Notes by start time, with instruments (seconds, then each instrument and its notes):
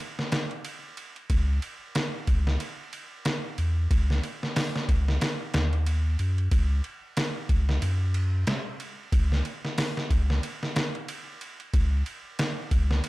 0.19 snare
0.32 snare, ride
0.51 ride
0.65 ride
0.97 ride
1.16 ride
1.30 sub bass C#2, kick, ride
1.62 ride
1.95 snare, ride
2.27 sub bass C#2, kick, ride
2.47 snare
2.60 ride
2.93 ride
3.25 snare, ride
3.58 sub bass E2, ride
3.91 sub bass C#2, kick, ride
4.10 snare
4.23 ride
4.43 snare
4.56 snare, open hi-hat
4.76 snare
4.89 sub bass C#2, kick, ride
5.08 snare
5.21 snare, ride
5.54 sub bass D#2, snare, ride
5.73 ride
5.87 ride
6.19 sub bass F#2, ride
6.38 ride
6.51 sub bass C#2, kick, ride
6.84 ride
7.17 snare, ride
7.49 sub bass C#2, kick, ride
7.69 snare
7.82 sub bass F#2, ride
8.14 ride
8.47 snare, ride
8.80 ride
9.12 sub bass C#2, kick, ride
9.32 snare
9.45 ride
9.65 snare
9.78 snare, open hi-hat
9.97 snare
10.10 sub bass C#2, kick, ride
10.30 snare
10.43 ride
10.63 snare
10.76 snare, ride
10.95 ride
11.08 ride
11.41 ride
11.60 ride
11.74 sub bass C#2, kick, ride
12.06 ride
12.39 snare, ride
12.71 sub bass C#2, kick, ride
12.91 snare
13.04 ride